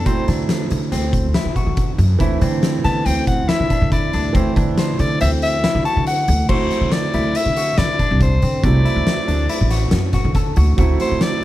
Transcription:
0.05 upright bass D2, grand piano F#3 A3 C4 E4, clean electric guitar C4, soprano saxophone C5, kick, closed hi-hat
0.28 upright bass D3, clean electric guitar D4, snare, closed hi-hat
0.49 snare, closed hi-hat
0.70 upright bass D3, closed hi-hat
0.92 upright bass D2, clean electric guitar C4, snare, closed hi-hat
1.13 kick, closed hi-hat
1.34 clean electric guitar E4, snare, closed hi-hat
1.45 upright bass D3
1.56 clean electric guitar F#4, kick, closed hi-hat
1.67 upright bass D3
1.77 kick, closed hi-hat
1.98 upright bass F#2, closed hi-hat
2.19 upright bass D2, grand piano E3 A3 C4 E4, clean electric guitar E4, kick, closed hi-hat
2.41 upright bass D3, clean electric guitar C4, closed hi-hat
2.63 snare, closed hi-hat
2.84 upright bass D3, clean electric guitar B3, soprano saxophone A5, snare, closed hi-hat
3.06 upright bass D2, clean electric guitar C4, soprano saxophone G5, closed hi-hat
3.27 soprano saxophone F#5, kick, closed hi-hat
3.48 clean electric guitar E4, soprano saxophone E5, snare, closed hi-hat
3.60 upright bass D3
3.70 clean electric guitar D4, kick, closed hi-hat
3.82 upright bass D3
3.92 clean electric guitar E4, soprano saxophone D5, kick, closed hi-hat
4.13 upright bass D2, clean electric guitar D4, closed hi-hat
4.33 upright bass D2, grand piano E3 A3 C4 E4, clean electric guitar C4, soprano saxophone C5, kick, closed hi-hat
4.56 upright bass D3, clean electric guitar D4, kick, closed hi-hat
4.78 soprano saxophone C5, snare, closed hi-hat
4.99 upright bass D3, soprano saxophone D5, closed hi-hat
5.21 upright bass D2, clean electric guitar C4, soprano saxophone E5, closed hi-hat
5.42 soprano saxophone E5, closed hi-hat
5.64 clean electric guitar E4, snare, closed hi-hat
5.75 upright bass D3
5.85 clean electric guitar F#4, soprano saxophone A5, closed hi-hat
5.97 upright bass D3
6.07 soprano saxophone F#5, closed hi-hat
6.28 upright bass D2, closed hi-hat
6.48 upright bass D2, grand piano F#3 A3 C4, clean electric guitar F#4, soprano saxophone C5, kick, crash
6.52 grand piano E4
6.71 snare, closed hi-hat
6.81 upright bass D3
6.92 soprano saxophone D5, snare, closed hi-hat
7.14 upright bass D2, clean electric guitar E4, closed hi-hat
7.35 soprano saxophone E5, closed hi-hat
7.46 upright bass D3
7.56 clean electric guitar F#4, closed hi-hat
7.78 upright bass D3, clean electric guitar E4, soprano saxophone D5, snare, closed hi-hat
7.99 clean electric guitar D4, kick, closed hi-hat
8.11 upright bass C2
8.21 soprano saxophone C5, kick, closed hi-hat
8.42 upright bass D3, clean electric guitar C4, closed hi-hat
8.62 upright bass C2, grand piano F#3 A3 C4 E4, soprano saxophone D5, kick, closed hi-hat
8.85 clean electric guitar E4, closed hi-hat
8.96 upright bass D2
9.07 snare, closed hi-hat
9.28 upright bass D2, clean electric guitar D4, closed hi-hat
9.49 clean electric guitar E4, closed hi-hat
9.61 upright bass A1
9.70 clean electric guitar F#4, snare, closed hi-hat
9.91 upright bass F#2, snare, closed hi-hat
10.13 clean electric guitar F#4, kick, snare, closed hi-hat
10.24 upright bass D3
10.35 clean electric guitar A4, kick, snare, closed hi-hat
10.56 upright bass D2, clean electric guitar F#4, closed hi-hat
10.77 upright bass D2, grand piano F#3 A3 C4 E4, clean electric guitar F#4, kick, closed hi-hat
11.00 soprano saxophone C5, snare, closed hi-hat
11.11 upright bass D3
11.21 soprano saxophone D5, snare, closed hi-hat

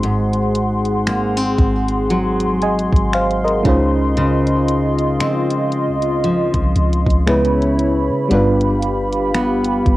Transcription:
Already playing: 808-style bass G#1, fm electric piano G#3 C4 D#4 F#4 C5, steel-string acoustic guitar C4 D#4, analog synth pad G#4 F#5 C6
0.03 steel-string acoustic guitar G#2, closed hi-hat
0.33 closed hi-hat
0.55 closed hi-hat
0.85 closed hi-hat
1.07 steel-string acoustic guitar A#3, finger snap, closed hi-hat
1.37 steel-string acoustic guitar C4, closed hi-hat
1.58 808-style bass G#1, kick, closed hi-hat
1.88 closed hi-hat
2.10 steel-string acoustic guitar F#3, closed hi-hat
2.40 closed hi-hat
2.62 fm electric piano D#5 G#5, closed hi-hat
2.79 closed hi-hat
2.93 808-style bass G#1, kick, closed hi-hat
3.13 fm electric piano C5 F5, finger snap, closed hi-hat
3.31 closed hi-hat
3.44 fm electric piano A#4 D#5, closed hi-hat
3.63 808-style bass C#2, steel-string acoustic guitar C#3, fm electric piano G#3 C#4 D#4, analog synth pad F4 D#5, kick, closed hi-hat
3.67 fm electric piano F4 C5
4.17 steel-string acoustic guitar C#3, closed hi-hat
4.47 closed hi-hat
4.68 closed hi-hat
4.99 closed hi-hat
5.20 808-style bass F3, steel-string acoustic guitar C4, finger snap, closed hi-hat
5.51 closed hi-hat
5.72 closed hi-hat
5.87 808-style bass C#2
6.02 closed hi-hat
6.24 steel-string acoustic guitar F3, closed hi-hat
6.54 808-style bass C2, kick, closed hi-hat
6.76 808-style bass C#2, closed hi-hat
6.93 closed hi-hat
7.06 808-style bass C#2, kick, closed hi-hat
7.27 steel-string acoustic guitar C#3, fm electric piano G#3 B3 C#4 E4 B4, analog synth pad E4 C#5 B5, finger snap, closed hi-hat
7.45 closed hi-hat
7.62 closed hi-hat
7.79 closed hi-hat
8.09 808-style bass C#3
8.29 808-style bass G1, steel-string acoustic guitar G2, fm electric piano G3 B3 D4, analog synth pad G4 F5, closed hi-hat
8.33 fm electric piano F4 B4
8.61 closed hi-hat
8.82 closed hi-hat
9.13 closed hi-hat
9.34 steel-string acoustic guitar B3, finger snap, closed hi-hat
9.65 closed hi-hat
9.86 808-style bass G1, kick, closed hi-hat

